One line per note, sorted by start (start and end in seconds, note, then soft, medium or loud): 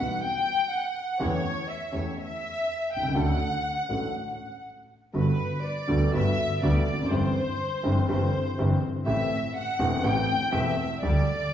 0.00 0.20 B1 medium
0.00 0.20 B2 medium
0.00 0.20 E3 soft
0.00 0.20 G3 soft
0.00 0.20 B3 soft
0.00 0.20 F#4 medium
0.00 0.23 F#5 medium
0.23 0.69 G5 loud
0.71 1.20 F#5 medium
1.19 1.41 E2 medium
1.19 1.41 E3 medium
1.19 1.41 A3 medium
1.19 1.41 C#4 medium
1.19 1.41 G4 medium
1.19 1.69 C#5 loud
1.68 1.93 E5 medium
1.92 2.14 E2 medium
1.92 2.15 E2 medium
1.92 2.14 E3 medium
1.92 2.14 A3 soft
1.92 2.14 C#4 soft
1.92 2.14 G4 soft
1.92 2.18 C#5 medium
2.18 2.88 E5 medium
2.92 3.16 C2 medium
2.92 3.17 G5 medium
2.96 3.03 B1 soft
3.03 3.10 C2 medium
3.08 3.15 C#2 medium
3.14 3.36 D2 medium
3.14 3.37 D2 medium
3.14 3.36 D3 medium
3.14 3.36 F#3 medium
3.14 3.36 A3 medium
3.14 3.36 D4 medium
3.14 3.36 A4 medium
3.14 4.61 F#5 loud
3.89 4.11 A1 medium
3.89 4.10 A2 medium
3.89 4.10 F#3 soft
3.89 4.11 A3 soft
3.89 4.11 D4 soft
3.89 4.11 A4 soft
5.13 5.35 G1 medium
5.13 5.36 G1 medium
5.13 5.35 G2 medium
5.13 5.35 D3 medium
5.13 5.35 G3 medium
5.13 5.35 B3 medium
5.13 5.35 F#4 medium
5.13 5.61 B4 medium
5.64 6.14 D5 medium
5.87 6.09 D2 medium
5.87 6.10 D2 medium
5.87 6.10 D3 medium
5.87 6.09 G3 medium
5.87 6.10 B3 medium
5.87 6.09 F#4 medium
6.13 6.34 G1 medium
6.13 6.34 G2 medium
6.13 6.34 D3 medium
6.13 6.34 G3 medium
6.13 6.34 B3 medium
6.13 6.34 F#4 medium
6.13 6.60 E5 loud
6.62 6.83 D2 medium
6.62 6.83 D3 medium
6.62 6.83 G3 medium
6.62 6.83 B3 medium
6.62 6.83 F#4 medium
6.62 7.08 D5 medium
6.87 7.11 F1 medium
6.93 6.99 E2 soft
6.99 7.05 F2 medium
6.99 7.11 F#2 medium
7.10 7.32 G1 medium
7.10 7.32 G2 medium
7.10 7.32 E3 medium
7.10 7.32 G3 medium
7.10 7.32 C4 medium
7.10 7.32 G4 medium
7.10 8.09 C5 loud
7.83 8.05 G1 medium
7.83 8.06 G1 medium
7.83 8.05 G2 medium
7.83 8.05 E3 medium
7.83 8.05 G3 medium
7.83 8.05 C4 medium
7.83 8.05 G4 medium
8.08 8.30 G1 medium
8.08 8.29 G2 medium
8.08 8.29 E3 medium
8.08 8.30 G3 medium
8.08 8.30 C4 medium
8.08 8.30 G4 medium
8.08 8.79 C5 medium
8.58 8.79 G1 medium
8.58 8.79 G2 medium
8.58 8.79 E3 medium
8.58 8.79 G3 medium
8.58 8.79 C4 medium
8.58 8.79 G4 medium
9.05 9.27 A1 medium
9.05 9.28 A1 medium
9.05 9.27 A2 medium
9.05 9.27 E3 medium
9.05 9.27 A3 medium
9.05 9.27 C4 medium
9.05 9.27 G4 medium
9.05 9.51 E5 medium
9.56 10.04 F#5 loud
9.79 10.00 E1 medium
9.79 10.00 E1 loud
9.79 10.00 E2 medium
9.79 10.00 E3 medium
9.79 10.00 A3 medium
9.79 10.00 C4 medium
9.79 10.00 G4 medium
10.03 10.24 A1 medium
10.03 10.25 A1 medium
10.03 10.24 A2 medium
10.03 10.24 E3 medium
10.03 10.24 A3 medium
10.03 10.24 C4 medium
10.03 10.25 G4 medium
10.03 10.53 G5 loud
10.52 10.73 E1 medium
10.52 10.73 E2 medium
10.52 10.73 E3 medium
10.52 10.73 A3 medium
10.52 10.73 C4 medium
10.52 10.73 G4 medium
10.52 11.02 E5 medium
11.02 11.23 D2 medium
11.02 11.23 D3 medium
11.02 11.23 G3 medium
11.02 11.23 A3 medium
11.02 11.23 G4 medium
11.02 11.54 D5 loud